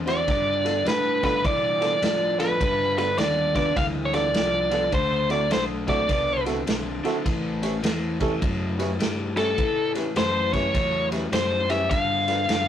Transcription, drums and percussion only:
0.07 snare, ride
0.28 kick, snare, ride
0.66 snare, ride
0.86 snare, ride
1.23 kick, snare, ride
1.45 kick, ride
1.82 snare, ride
2.02 snare, ride
2.40 snare, ride
2.61 kick, ride
2.98 snare, ride
3.18 snare, ride
3.55 kick, snare, ride
3.76 kick, snare, ride
4.13 snare, ride
4.34 snare, ride
4.71 snare, ride
4.92 kick, ride
5.30 snare, ride
5.51 snare, ride
5.88 kick, snare, ride
6.09 kick, snare, ride
6.46 snare, ride
6.67 snare, ride
7.05 snare, ride
7.26 kick, snare, ride
7.63 snare, ride
7.84 snare, ride
8.20 kick, snare, ride
8.42 kick, ride
8.79 snare, ride
9.00 snare, ride
9.37 snare, ride
9.58 kick, ride
9.95 snare, ride
10.16 snare, ride
10.53 kick, snare, ride
10.74 kick, snare, ride
11.12 snare, ride
11.33 snare, ride
11.70 snare, ride
11.91 kick, snare, ride
12.28 snare, ride
12.49 snare, ride

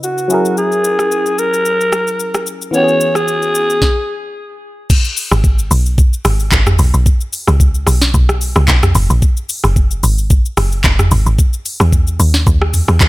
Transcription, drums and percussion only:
0.03 shaker
0.18 shaker
0.30 shaker
0.45 shaker
0.57 shaker
0.72 shaker
0.84 shaker
0.99 cross-stick, shaker
1.12 shaker
1.26 shaker
1.39 shaker
1.54 shaker
1.66 shaker
1.81 shaker
1.92 cross-stick, shaker
2.07 shaker
2.20 shaker
2.34 cross-stick, shaker
2.46 shaker
2.62 shaker
2.74 shaker
2.88 shaker
3.01 shaker
3.15 cross-stick, shaker
3.28 shaker
3.42 shaker
3.55 shaker
3.70 shaker
3.82 kick, snare
4.90 kick, crash, shaker
5.05 shaker
5.17 open hi-hat, shaker
5.32 cross-stick, shaker
5.44 kick, shaker
5.59 shaker
5.71 open hi-hat, shaker
5.86 shaker
5.98 kick, shaker
6.13 shaker
6.25 cross-stick, open hi-hat, shaker
6.40 shaker
6.52 kick, clap, shaker
6.67 cross-stick, mid tom, shaker
6.79 open hi-hat, shaker
6.94 shaker
7.06 kick, shaker
7.21 shaker
7.33 open hi-hat, shaker
7.47 cross-stick, shaker
7.60 kick, shaker
7.75 shaker
7.87 cross-stick, open hi-hat, shaker
8.02 snare, shaker
8.14 kick, shaker
8.29 cross-stick, shaker
8.41 open hi-hat, shaker
8.56 cross-stick, shaker
8.68 kick, clap, shaker
8.83 cross-stick, mid tom, shaker
8.95 open hi-hat, shaker
9.10 shaker
9.22 kick, shaker
9.37 shaker
9.49 open hi-hat, shaker
9.64 cross-stick, shaker
9.76 kick, shaker
9.91 shaker
10.03 open hi-hat, shaker
10.18 shaker
10.30 kick, shaker
10.46 shaker
10.57 cross-stick, open hi-hat, shaker
10.72 shaker
10.84 kick, clap, shaker
10.99 cross-stick, mid tom, shaker
11.11 open hi-hat, shaker
11.26 shaker
11.39 kick, shaker
11.53 shaker
11.66 open hi-hat, shaker
11.80 cross-stick, shaker
11.92 kick, shaker
12.07 shaker
12.20 open hi-hat, shaker
12.34 snare, shaker
12.47 kick, shaker
12.62 cross-stick
12.74 mid tom, open hi-hat, shaker
12.88 cross-stick, shaker
13.01 kick, clap, shaker

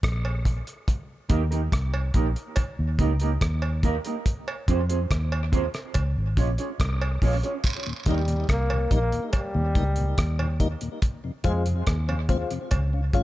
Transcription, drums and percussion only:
0.03 kick, cross-stick, closed hi-hat
0.25 cowbell
0.45 kick, closed hi-hat
0.67 closed hi-hat
0.88 kick, closed hi-hat
1.30 kick, closed hi-hat
1.52 closed hi-hat
1.72 kick, cross-stick, closed hi-hat
1.94 cowbell
2.14 kick, closed hi-hat
2.36 closed hi-hat
2.56 kick, closed hi-hat, cowbell
2.99 kick, closed hi-hat
3.20 closed hi-hat
3.41 kick, cross-stick, closed hi-hat
3.62 cowbell
3.83 kick, closed hi-hat
4.05 closed hi-hat
4.26 kick, closed hi-hat
4.48 cowbell
4.68 kick, closed hi-hat
4.90 closed hi-hat
5.11 kick, cross-stick, closed hi-hat
5.32 cowbell
5.53 kick, closed hi-hat
5.74 cross-stick, closed hi-hat
5.94 kick, closed hi-hat, cowbell
6.37 kick, closed hi-hat
6.58 closed hi-hat
6.80 kick, cross-stick, closed hi-hat
7.01 cowbell
7.22 kick, open hi-hat
7.43 closed hi-hat
7.64 kick, closed hi-hat, vibraslap
8.06 kick, closed hi-hat
8.28 closed hi-hat
8.49 kick, cross-stick, closed hi-hat
8.70 cowbell
8.91 kick, closed hi-hat
9.12 closed hi-hat
9.33 kick, closed hi-hat, cowbell
9.75 kick, closed hi-hat
9.96 closed hi-hat
10.18 kick, cross-stick, closed hi-hat
10.39 cowbell
10.60 kick, closed hi-hat
10.81 closed hi-hat
11.02 kick, closed hi-hat
11.44 kick, closed hi-hat
11.66 closed hi-hat
11.87 kick, cross-stick, closed hi-hat
12.09 cowbell
12.29 kick, closed hi-hat
12.51 closed hi-hat
12.71 kick, closed hi-hat, cowbell
13.13 kick, closed hi-hat

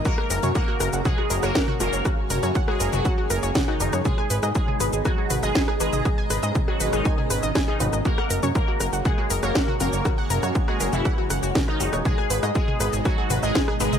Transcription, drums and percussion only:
0.05 kick, shaker
0.18 cross-stick
0.30 open hi-hat, shaker
0.43 mid tom, shaker
0.55 kick, cross-stick, shaker
0.80 cross-stick, open hi-hat, shaker
0.93 shaker
1.05 kick, mid tom, shaker
1.18 cross-stick
1.30 open hi-hat, shaker
1.43 cross-stick, shaker
1.55 kick, snare, shaker
1.68 mid tom
1.80 cross-stick, open hi-hat, shaker
1.93 shaker
2.05 kick, cross-stick, shaker
2.30 open hi-hat, mid tom, shaker
2.43 cross-stick, shaker
2.55 kick, shaker
2.68 cross-stick
2.80 open hi-hat, shaker
2.93 mid tom, shaker
3.05 kick, cross-stick, shaker
3.30 cross-stick, open hi-hat, shaker
3.43 shaker
3.55 kick, snare, mid tom, shaker
3.68 cross-stick
3.80 open hi-hat, shaker
3.93 cross-stick, shaker
4.05 kick, mid tom, shaker
4.18 cross-stick
4.30 open hi-hat, shaker
4.43 cross-stick, shaker
4.55 kick, shaker
4.68 mid tom
4.80 cross-stick, open hi-hat, shaker
4.93 shaker
5.05 kick, cross-stick, shaker
5.30 open hi-hat, mid tom, shaker
5.43 cross-stick, shaker
5.55 kick, snare, shaker
5.68 cross-stick
5.80 open hi-hat, shaker
5.93 mid tom, shaker
6.05 kick, cross-stick, shaker
6.30 cross-stick, open hi-hat, shaker
6.43 shaker
6.55 kick, mid tom, shaker
6.68 cross-stick
6.80 open hi-hat, shaker
6.93 cross-stick, shaker
7.05 kick, shaker
7.18 mid tom
7.30 cross-stick, open hi-hat, shaker
7.43 shaker
7.55 kick, cross-stick, snare, shaker
7.80 open hi-hat, mid tom, shaker
7.93 cross-stick, shaker
8.05 kick, shaker
8.18 cross-stick
8.30 open hi-hat, shaker
8.43 mid tom, shaker
8.55 kick, cross-stick, shaker
8.80 cross-stick, open hi-hat, shaker
8.93 shaker
9.05 kick, mid tom, shaker
9.18 cross-stick
9.30 open hi-hat, shaker
9.43 cross-stick, shaker
9.55 kick, snare, shaker
9.68 mid tom
9.80 cross-stick, open hi-hat, shaker
9.93 shaker
10.05 kick, cross-stick, shaker
10.30 open hi-hat, mid tom, shaker
10.43 cross-stick, shaker
10.55 kick, shaker
10.68 cross-stick
10.80 open hi-hat, shaker
10.93 mid tom, shaker
11.05 kick, cross-stick, shaker
11.30 cross-stick, open hi-hat, shaker
11.43 shaker
11.55 kick, snare, mid tom, shaker
11.68 cross-stick
11.80 open hi-hat, shaker
11.93 cross-stick, shaker
12.05 kick, mid tom, shaker
12.18 cross-stick
12.30 open hi-hat, shaker
12.43 cross-stick, shaker
12.55 kick, shaker
12.68 mid tom
12.80 cross-stick, open hi-hat, shaker
12.93 shaker
13.05 kick, cross-stick, shaker
13.30 open hi-hat, mid tom, shaker
13.43 cross-stick, shaker
13.55 kick, snare, shaker
13.68 cross-stick
13.80 open hi-hat, shaker
13.93 mid tom, shaker

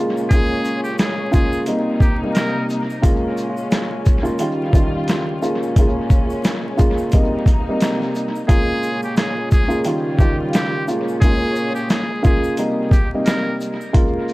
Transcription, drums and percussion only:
0.17 shaker
0.31 kick, closed hi-hat, shaker
0.65 shaker
0.84 shaker
0.98 snare, closed hi-hat, shaker
1.33 kick, shaker
1.52 shaker
1.66 closed hi-hat, shaker
2.00 kick, shaker
2.35 snare, closed hi-hat, shaker
2.69 shaker
2.90 shaker
3.03 kick, closed hi-hat, shaker
3.37 shaker
3.57 shaker
3.71 snare, closed hi-hat, shaker
4.06 kick, shaker
4.25 shaker
4.39 closed hi-hat, shaker
4.73 kick, shaker
5.08 snare, closed hi-hat, shaker
5.42 shaker
5.63 shaker
5.76 kick, closed hi-hat, shaker
6.10 kick, shaker
6.30 shaker
6.44 snare, closed hi-hat, shaker
6.78 kick, shaker
6.98 shaker
7.12 kick, closed hi-hat, shaker
7.46 kick, closed hi-hat, shaker
7.81 snare, closed hi-hat, shaker
8.02 snare
8.15 shaker
8.36 shaker
8.49 kick, closed hi-hat, shaker
8.83 shaker
9.03 shaker
9.17 snare, closed hi-hat, shaker
9.51 kick, shaker
9.71 shaker
9.84 closed hi-hat, shaker
10.19 kick, shaker
10.53 snare, closed hi-hat, shaker
10.88 shaker
11.08 shaker
11.22 kick, closed hi-hat, shaker
11.56 shaker
11.75 shaker
11.90 snare, closed hi-hat, shaker
12.24 kick, shaker
12.44 shaker
12.57 closed hi-hat, shaker
12.91 kick, shaker
13.26 snare, closed hi-hat, shaker
13.60 shaker
13.81 shaker
13.94 kick, closed hi-hat
14.28 shaker

